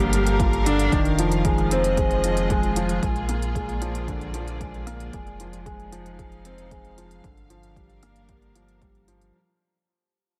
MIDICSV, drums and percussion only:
0, 0, Header, 1, 2, 480
1, 0, Start_track
1, 0, Tempo, 526316
1, 837, Time_signature, 4, 2, 24, 8
1, 9478, End_track
2, 0, Start_track
2, 0, Title_t, "Drums"
2, 1, Note_on_c, 9, 42, 20
2, 92, Note_off_c, 9, 42, 0
2, 118, Note_on_c, 9, 42, 62
2, 209, Note_off_c, 9, 42, 0
2, 242, Note_on_c, 9, 42, 29
2, 333, Note_off_c, 9, 42, 0
2, 361, Note_on_c, 9, 36, 93
2, 363, Note_on_c, 9, 42, 37
2, 453, Note_off_c, 9, 36, 0
2, 454, Note_off_c, 9, 42, 0
2, 486, Note_on_c, 9, 42, 18
2, 577, Note_off_c, 9, 42, 0
2, 605, Note_on_c, 9, 42, 61
2, 696, Note_off_c, 9, 42, 0
2, 724, Note_on_c, 9, 42, 28
2, 815, Note_off_c, 9, 42, 0
2, 842, Note_on_c, 9, 36, 91
2, 842, Note_on_c, 9, 42, 35
2, 933, Note_off_c, 9, 36, 0
2, 934, Note_off_c, 9, 42, 0
2, 961, Note_on_c, 9, 42, 19
2, 1052, Note_off_c, 9, 42, 0
2, 1082, Note_on_c, 9, 42, 61
2, 1173, Note_off_c, 9, 42, 0
2, 1200, Note_on_c, 9, 42, 27
2, 1291, Note_off_c, 9, 42, 0
2, 1320, Note_on_c, 9, 42, 34
2, 1321, Note_on_c, 9, 36, 93
2, 1411, Note_off_c, 9, 42, 0
2, 1412, Note_off_c, 9, 36, 0
2, 1443, Note_on_c, 9, 42, 17
2, 1534, Note_off_c, 9, 42, 0
2, 1562, Note_on_c, 9, 42, 64
2, 1653, Note_off_c, 9, 42, 0
2, 1679, Note_on_c, 9, 42, 27
2, 1771, Note_off_c, 9, 42, 0
2, 1800, Note_on_c, 9, 36, 87
2, 1800, Note_on_c, 9, 42, 39
2, 1891, Note_off_c, 9, 42, 0
2, 1892, Note_off_c, 9, 36, 0
2, 1921, Note_on_c, 9, 42, 18
2, 2012, Note_off_c, 9, 42, 0
2, 2041, Note_on_c, 9, 42, 64
2, 2132, Note_off_c, 9, 42, 0
2, 2160, Note_on_c, 9, 42, 26
2, 2251, Note_off_c, 9, 42, 0
2, 2280, Note_on_c, 9, 42, 37
2, 2281, Note_on_c, 9, 36, 91
2, 2372, Note_off_c, 9, 36, 0
2, 2372, Note_off_c, 9, 42, 0
2, 2401, Note_on_c, 9, 42, 19
2, 2492, Note_off_c, 9, 42, 0
2, 2520, Note_on_c, 9, 42, 63
2, 2611, Note_off_c, 9, 42, 0
2, 2637, Note_on_c, 9, 42, 27
2, 2728, Note_off_c, 9, 42, 0
2, 2761, Note_on_c, 9, 36, 88
2, 2761, Note_on_c, 9, 42, 33
2, 2852, Note_off_c, 9, 36, 0
2, 2852, Note_off_c, 9, 42, 0
2, 2880, Note_on_c, 9, 42, 17
2, 2971, Note_off_c, 9, 42, 0
2, 2998, Note_on_c, 9, 42, 54
2, 3089, Note_off_c, 9, 42, 0
2, 3123, Note_on_c, 9, 42, 26
2, 3214, Note_off_c, 9, 42, 0
2, 3241, Note_on_c, 9, 36, 82
2, 3244, Note_on_c, 9, 42, 32
2, 3332, Note_off_c, 9, 36, 0
2, 3335, Note_off_c, 9, 42, 0
2, 3364, Note_on_c, 9, 42, 17
2, 3455, Note_off_c, 9, 42, 0
2, 3481, Note_on_c, 9, 42, 59
2, 3572, Note_off_c, 9, 42, 0
2, 3602, Note_on_c, 9, 42, 26
2, 3693, Note_off_c, 9, 42, 0
2, 3722, Note_on_c, 9, 36, 79
2, 3722, Note_on_c, 9, 42, 36
2, 3813, Note_off_c, 9, 36, 0
2, 3814, Note_off_c, 9, 42, 0
2, 3843, Note_on_c, 9, 42, 19
2, 3934, Note_off_c, 9, 42, 0
2, 3958, Note_on_c, 9, 42, 59
2, 4049, Note_off_c, 9, 42, 0
2, 4082, Note_on_c, 9, 42, 24
2, 4173, Note_off_c, 9, 42, 0
2, 4203, Note_on_c, 9, 42, 35
2, 4204, Note_on_c, 9, 36, 89
2, 4294, Note_off_c, 9, 42, 0
2, 4295, Note_off_c, 9, 36, 0
2, 4326, Note_on_c, 9, 42, 17
2, 4417, Note_off_c, 9, 42, 0
2, 4442, Note_on_c, 9, 42, 60
2, 4533, Note_off_c, 9, 42, 0
2, 4563, Note_on_c, 9, 42, 26
2, 4654, Note_off_c, 9, 42, 0
2, 4682, Note_on_c, 9, 42, 33
2, 4685, Note_on_c, 9, 36, 84
2, 4773, Note_off_c, 9, 42, 0
2, 4776, Note_off_c, 9, 36, 0
2, 4804, Note_on_c, 9, 42, 16
2, 4895, Note_off_c, 9, 42, 0
2, 4924, Note_on_c, 9, 42, 52
2, 5015, Note_off_c, 9, 42, 0
2, 5045, Note_on_c, 9, 42, 25
2, 5136, Note_off_c, 9, 42, 0
2, 5164, Note_on_c, 9, 36, 80
2, 5164, Note_on_c, 9, 42, 32
2, 5255, Note_off_c, 9, 42, 0
2, 5256, Note_off_c, 9, 36, 0
2, 5286, Note_on_c, 9, 42, 15
2, 5377, Note_off_c, 9, 42, 0
2, 5404, Note_on_c, 9, 42, 57
2, 5495, Note_off_c, 9, 42, 0
2, 5526, Note_on_c, 9, 42, 24
2, 5617, Note_off_c, 9, 42, 0
2, 5645, Note_on_c, 9, 36, 81
2, 5646, Note_on_c, 9, 42, 35
2, 5736, Note_off_c, 9, 36, 0
2, 5737, Note_off_c, 9, 42, 0
2, 5763, Note_on_c, 9, 42, 18
2, 5854, Note_off_c, 9, 42, 0
2, 5883, Note_on_c, 9, 42, 59
2, 5974, Note_off_c, 9, 42, 0
2, 6003, Note_on_c, 9, 42, 23
2, 6094, Note_off_c, 9, 42, 0
2, 6123, Note_on_c, 9, 42, 36
2, 6124, Note_on_c, 9, 36, 78
2, 6214, Note_off_c, 9, 42, 0
2, 6215, Note_off_c, 9, 36, 0
2, 6244, Note_on_c, 9, 42, 17
2, 6335, Note_off_c, 9, 42, 0
2, 6365, Note_on_c, 9, 42, 54
2, 6456, Note_off_c, 9, 42, 0
2, 6484, Note_on_c, 9, 42, 25
2, 6575, Note_off_c, 9, 42, 0
2, 6604, Note_on_c, 9, 36, 86
2, 6605, Note_on_c, 9, 42, 30
2, 6695, Note_off_c, 9, 36, 0
2, 6696, Note_off_c, 9, 42, 0
2, 6726, Note_on_c, 9, 42, 17
2, 6817, Note_off_c, 9, 42, 0
2, 6842, Note_on_c, 9, 42, 55
2, 6933, Note_off_c, 9, 42, 0
2, 6961, Note_on_c, 9, 42, 25
2, 7052, Note_off_c, 9, 42, 0
2, 7082, Note_on_c, 9, 36, 77
2, 7085, Note_on_c, 9, 42, 31
2, 7173, Note_off_c, 9, 36, 0
2, 7176, Note_off_c, 9, 42, 0
2, 7201, Note_on_c, 9, 42, 16
2, 7292, Note_off_c, 9, 42, 0
2, 7321, Note_on_c, 9, 42, 58
2, 7412, Note_off_c, 9, 42, 0
2, 7440, Note_on_c, 9, 42, 23
2, 7531, Note_off_c, 9, 42, 0
2, 7558, Note_on_c, 9, 42, 34
2, 7562, Note_on_c, 9, 36, 81
2, 7649, Note_off_c, 9, 42, 0
2, 7653, Note_off_c, 9, 36, 0
2, 7681, Note_on_c, 9, 42, 17
2, 7772, Note_off_c, 9, 42, 0
2, 7802, Note_on_c, 9, 42, 60
2, 7893, Note_off_c, 9, 42, 0
2, 7920, Note_on_c, 9, 42, 23
2, 8012, Note_off_c, 9, 42, 0
2, 8041, Note_on_c, 9, 36, 82
2, 8041, Note_on_c, 9, 42, 32
2, 8132, Note_off_c, 9, 36, 0
2, 8132, Note_off_c, 9, 42, 0
2, 8162, Note_on_c, 9, 42, 17
2, 8254, Note_off_c, 9, 42, 0
2, 8281, Note_on_c, 9, 42, 54
2, 8373, Note_off_c, 9, 42, 0
2, 8404, Note_on_c, 9, 42, 24
2, 8495, Note_off_c, 9, 42, 0
2, 9478, End_track
0, 0, End_of_file